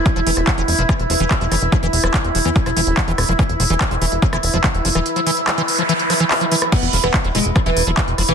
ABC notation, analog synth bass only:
X:1
M:4/4
L:1/16
Q:1/4=144
K:none
V:1 name="Analog synth bass" clef=bass
z E,,, E,,, E,,, z E,,, E,,, E,,, z E,,, E,,, E,,, z E,,, F,,, E,,, | z E,,, E,,, E,,, z E,,, E,,, E,, z E,,, E,,, E,,, z E,,, E,,, E,,, | z E,,, E,,, E,,, z E,,, E,,, E,,, z E,,, E,,, E,,, z E,,, F,,, E,,, | z16 |
z E,,, E,,, E,,, z E,,, E,,, E,,, z E,,, E,,, E,,, z E,,, F,,, E,,, |]